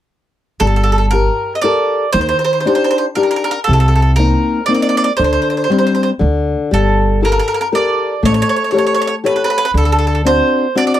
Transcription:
0.60 upright bass G1, nylon-string guitar G3, mandolin A4
0.67 mandolin A4
0.76 mandolin A4
0.84 mandolin A4
0.92 mandolin A4
0.98 mandolin A4
1.11 nylon-string guitar G4 A#4, mandolin A#4
1.55 mandolin D#5
1.62 nylon-string guitar G4 A4 A#4, mandolin D5
2.13 upright bass D#2, nylon-string guitar D#3, mandolin C5
2.21 mandolin C5
2.29 mandolin C5
2.39 mandolin C5
2.45 mandolin C5
2.53 mandolin C5
2.60 mandolin C5
2.65 nylon-string guitar D4 D#4 G4, mandolin C5
2.75 mandolin C5
2.84 mandolin C5
2.91 mandolin C5
2.98 mandolin C5
3.15 nylon-string guitar D4 D#4 G4, mandolin A#4
3.23 mandolin A#4
3.31 mandolin A#4
3.36 mandolin A#4
3.44 mandolin A#4
3.51 mandolin A#4
3.64 nylon-string guitar C3, mandolin A4
3.69 upright bass C2
3.73 mandolin A4
3.80 mandolin A4
3.88 mandolin A4
3.96 mandolin A4
4.02 mandolin A4
4.16 nylon-string guitar A#3 C4 D#4, mandolin A#4
4.66 nylon-string guitar A#3 C4 D#4, mandolin D5
4.75 mandolin D5
4.82 mandolin D5
4.89 mandolin D5
4.97 mandolin D5
5.04 mandolin D5
5.17 upright bass D2, nylon-string guitar D3, mandolin C5
5.24 mandolin C5
5.33 mandolin C5
5.42 mandolin C5
5.50 mandolin C5
5.57 mandolin C5
5.64 mandolin C5
5.70 nylon-string guitar G3 C4 D4, mandolin C5
5.78 mandolin C5
5.87 mandolin C5
5.95 mandolin C5
6.03 mandolin C5
6.19 upright bass D2, nylon-string guitar D3
6.71 upright bass G1, nylon-string guitar G3, mandolin A4
7.22 nylon-string guitar G4 A4 A#4, mandolin A#4
7.32 mandolin A#4
7.39 mandolin A#4
7.48 mandolin A#4
7.54 mandolin A#4
7.61 mandolin A#4
7.72 nylon-string guitar G4 A4 A#4, mandolin D5
8.23 upright bass A1, nylon-string guitar A3, mandolin C#5
8.34 mandolin C#5
8.42 mandolin C#5
8.49 mandolin C#5
8.56 mandolin C#5
8.64 mandolin C#5
8.71 nylon-string guitar G4 A4 C#5, mandolin C#5
8.78 mandolin C#5
8.87 mandolin C#5
8.95 mandolin C#5
9.02 mandolin C#5
9.07 mandolin C#5
9.24 nylon-string guitar G4 A4 C#5, mandolin B4
9.36 mandolin B4
9.44 mandolin B4
9.50 mandolin B4
9.58 mandolin B4
9.65 mandolin B4
9.74 upright bass D2, nylon-string guitar D3, mandolin A4
9.85 mandolin A4
9.92 mandolin A4
9.99 mandolin A4
10.07 mandolin A4
10.15 mandolin A4
10.25 nylon-string guitar C4 D4 F#4, mandolin C5
10.75 nylon-string guitar C4 D4 F#4, mandolin D5
10.87 mandolin D5
10.94 mandolin D5

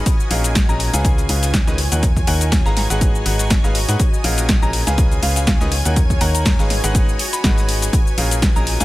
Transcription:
Already playing: ambient pad D#5 G#5, synth bell B5
0.06 ambient pad F4, string machine G#5 G#6, kick, closed hi-hat, shaker
0.20 shaker
0.31 fm bass A#1, upright piano A#2 C#4 G#4 A#4 F5, closed hi-hat, open hi-hat
0.44 closed hi-hat, shaker
0.51 ambient pad C#5, kick, closed hi-hat
0.55 snare, closed hi-hat, shaker
0.69 fm bass A#1, upright piano A#2 C#4 G#4 A#4 D#5, synth bell A#5, closed hi-hat, shaker
0.80 closed hi-hat, open hi-hat
0.93 fm bass C#2, upright piano C#3 C#4 G#4 B4 F5, synth bell G#5, snare, closed hi-hat, shaker
1.05 kick, closed hi-hat, shaker
1.18 closed hi-hat, shaker
1.29 fm bass C#2, upright piano C#3 C#4 G#4 B4 F5, closed hi-hat, open hi-hat
1.43 snare, closed hi-hat, shaker
1.54 kick, snare, closed hi-hat, shaker
1.67 fm bass C#2, upright piano D#3 C#4 G#4 B4 D#5, snare, shaker
1.78 ambient pad F#4, closed hi-hat, open hi-hat
1.92 fm bass D#2, upright piano D#3 D#4 A#4 C#5 F#5, closed hi-hat, shaker
2.03 kick, closed hi-hat, shaker
2.16 kick, closed hi-hat, shaker
2.23 ambient pad D#5
2.27 fm bass D#2, upright piano D#3 D#4 A#4 C#5 F#5, synth bell G#5, closed hi-hat, open hi-hat
2.41 synth bell G#5, closed hi-hat, shaker
2.52 kick, snare, closed hi-hat, open hi-hat, shaker
2.66 fm bass G#1, upright piano G#3 D#4 G#4 B4 F5, synth bell A#5, snare, shaker
2.77 synth bell A#5, snare, closed hi-hat, open hi-hat
2.90 fm bass G#1, upright piano G#3 D#4 G#4 B4 F#5, snare, closed hi-hat, shaker
3.01 kick, closed hi-hat, shaker
3.15 shaker
3.26 fm bass G#1, upright piano G#3 D#4 G#4 B4 F#5, closed hi-hat, open hi-hat
3.33 ambient pad G#5
3.39 snare, closed hi-hat, shaker
3.50 kick, snare, closed hi-hat, shaker
3.64 fm bass G#1, upright piano G#3 D#4 G#4 B4 F5, snare, shaker
3.75 closed hi-hat, open hi-hat
3.88 fm bass G#2, upright piano D#4 G#4 B4 F#5, snare, closed hi-hat, shaker
4.00 ambient pad F4, kick, closed hi-hat, shaker
4.14 shaker
4.24 fm bass A#1, upright piano A#2 C#4 G#4 A#4 F5, closed hi-hat, open hi-hat
4.38 closed hi-hat, shaker
4.44 ambient pad C#5
4.49 kick, snare, closed hi-hat, shaker
4.62 fm bass A#1, upright piano A#2 C#4 G#4 A#4 D#5, synth bell A#5, closed hi-hat, shaker
4.73 closed hi-hat, open hi-hat
4.87 fm bass C#2, upright piano C#3 C#4 G#4 B4 F5, synth bell G#5, snare, closed hi-hat, shaker
4.98 kick, closed hi-hat, shaker
5.12 closed hi-hat, shaker
5.23 fm bass C#2, upright piano C#3 C#4 G#4 B4 F5, synth bell F5, closed hi-hat, open hi-hat
5.36 synth bell F5, snare, closed hi-hat, shaker
5.47 kick, snare, closed hi-hat, shaker
5.61 fm bass C#2, upright piano D#3 C#4 G#4 B4 D#5, snare, shaker
5.72 ambient pad F#4, closed hi-hat, open hi-hat
5.85 fm bass D#2, upright piano D#3 D#4 A#4 C#5 F#5, closed hi-hat, shaker
5.91 ambient pad A#5
5.96 kick, closed hi-hat, shaker
6.10 kick, closed hi-hat, shaker
6.17 ambient pad D#5
6.21 fm bass D#2, upright piano D#3 D#4 A#4 C#5 F#5, synth bell A#5, closed hi-hat, open hi-hat
6.35 synth bell A#5, closed hi-hat, shaker
6.46 kick, snare, closed hi-hat, open hi-hat, shaker
6.59 fm bass G#1, upright piano G#3 D#4 G#4 B4 F5, snare, shaker
6.70 snare, closed hi-hat, open hi-hat
6.84 fm bass G#1, upright piano G#3 D#4 G#4 B4 F#5, snare, closed hi-hat, shaker
6.95 kick, closed hi-hat, shaker
7.09 shaker
7.19 closed hi-hat, open hi-hat
7.26 ambient pad G#5
7.33 synth bell B5, snare, closed hi-hat, shaker
7.44 fm bass G#1, upright piano G#3 D#4 G#4 B4 F#5, kick, snare, closed hi-hat, shaker
7.58 snare, shaker
7.69 closed hi-hat, open hi-hat
7.82 snare, closed hi-hat, shaker
7.93 ambient pad F4, kick, closed hi-hat, shaker
8.07 shaker
8.15 fm bass A#1, upright piano A#2 C#4 G#4 A#4 F5, ambient pad C#5, closed hi-hat, open hi-hat
8.31 closed hi-hat, shaker
8.42 kick, snare, closed hi-hat, shaker
8.56 fm bass A#1, upright piano A#2 C#4 G#4 A#4 D#5, synth bell A#5, closed hi-hat, shaker
8.67 closed hi-hat, open hi-hat
8.80 fm bass C#2, upright piano C#3 C#4 G#4 B4 F5, synth bell G#5, snare, closed hi-hat, shaker

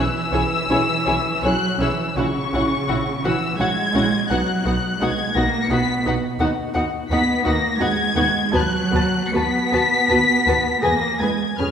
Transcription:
Already playing: cello section E3, violin section E6
0.32 double bass section B1, viola section C#4 E4, violin section G#4 C#5
0.69 double bass section B1, viola section C#4 E4, violin section G#4 C#5
1.07 double bass section B1, viola section C#4 E4, violin section G#4 C#5
1.44 double bass section B1, cello section F#3, viola section C#4 E4, violin section G#4 C#5 F#6
1.79 double bass section B1, cello section E3, viola section C#4 E4, violin section G#4 C#5 E6
2.17 double bass section A#1, cello section C#3, viola section C#4 E4, violin section F#4 F#5 C#6
2.54 double bass section A#1, viola section C#4 E4, violin section F#4 F#5
2.89 double bass section A#1, viola section C#4 E4, violin section F#4 F#5
3.24 double bass section A#1, cello section E3, viola section C#4 E4, violin section F#4 F#5 E6
3.59 double bass section A#1, cello section G#3, viola section C#4 E4, violin section F#4 F#5 G#6
3.94 double bass section A#1, viola section C#4 E4, violin section F#4 F#5
4.29 double bass section B1, cello section F#3, viola section B3 D#4, violin section F#4 F#5 F#6
4.65 double bass section B1, viola section B3 D#4, violin section F#4 F#5
5.01 double bass section B1, cello section G#3, viola section B3 D#4, violin section F#4 F#5 G#6
5.35 double bass section B1, cello section A#3, viola section B3 D#4, violin section F#4 F#5 A#6
5.64 violin section C#7
5.70 double bass section B1, cello section B3, viola section B3 D#4, violin section F#4 F#5 B6
6.05 double bass section B1, viola section B3 D#4, violin section F#4 F#5
6.40 double bass section D#2, viola section B3 D#4, violin section F#4 F#5
6.75 double bass section D#2, viola section B3 D#4, violin section F#4 F#5
7.10 double bass section D#2, cello section B3, viola section B3 D#4, violin section F#4 F#5 B6
7.45 double bass section D#2, cello section A#3, viola section B3 D#4, violin section F#4 F#5 A#6
7.80 double bass section D#2, cello section G#3, viola section B3 D#4, violin section F#4 F#5 G#6
8.16 double bass section D#2, viola section B3 D#4, violin section F#4 F#5
8.53 double bass section D#2, cello section F#3, viola section B3 F#4, violin section B4 A5 F#6
8.91 double bass section D#2, viola section B3 F#4, violin section B4 A5
9.28 violin section C#7
9.33 double bass section D#2, viola section B3 F#4, cello section B3, violin section B4 A5 B6
9.72 double bass section D#2, viola section B3 F#4, violin section B4 A5
10.10 double bass section D#2, viola section B3 F#4, violin section B4 A5
10.47 double bass section D#2, viola section B3 F#4, violin section B4 A5
10.83 double bass section E2, cello section A#3, viola section B3 G#4, violin section B4 G#5 A#6
11.20 double bass section E2, cello section G#3, viola section B3 G#4, violin section B4 G#5 G#6
11.58 double bass section F2, cello section F3, viola section C#4 G#4, violin section B4 G#5 F6

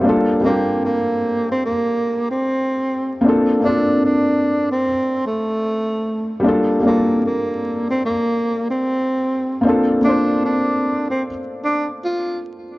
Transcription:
Already playing: felt piano C5 F5
0.01 felt piano G3 A#3 D4
0.07 felt piano F4 A4
0.41 felt piano G3 A#3, tenor saxophone A#3
0.45 felt piano D4 F4 G4
0.85 tenor saxophone A#3
1.51 tenor saxophone C4
1.65 tenor saxophone A#3
2.31 tenor saxophone C4
3.21 felt piano A#3 C4 D4
3.27 felt piano F4 A4
3.60 felt piano A#3 C4 D4
3.65 tenor saxophone D4, felt piano F4 A4
4.05 tenor saxophone D4
4.72 tenor saxophone C4
5.26 tenor saxophone A3
6.40 felt piano G3 A#3
6.44 felt piano D4 F4
6.48 felt piano A4
6.80 felt piano G3 A#3
6.85 tenor saxophone A#3, felt piano D4 F4 A4
7.25 tenor saxophone A#3
7.90 tenor saxophone C4
8.06 tenor saxophone A#3
8.70 tenor saxophone C4
9.61 felt piano A#3 C4 D4
9.67 felt piano F4 A4
10.01 felt piano A#3 C4, tenor saxophone D4
10.05 felt piano D4 F4 C5
10.45 tenor saxophone D4
11.10 tenor saxophone C4
11.65 tenor saxophone D4
12.05 tenor saxophone F4

